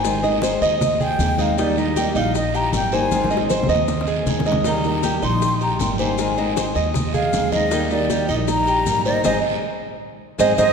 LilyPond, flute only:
\new Staff \with { instrumentName = "Flute" } { \time 4/4 \key aes \lydian \tempo 4 = 157 aes''8 r2 g''4 f''8 | d''8 ees''4 f''8 ees''8 bes''8 g''8 aes''8~ | aes''8 r2. r8 | bes''4. c'''4 bes''8 g''8 aes''8~ |
aes''4. r4 f''4 ees''8~ | ees''8 d''4 ees''8 bes''4. ees''8 | ees''8 r2 r8 ees''8 ees''8 | }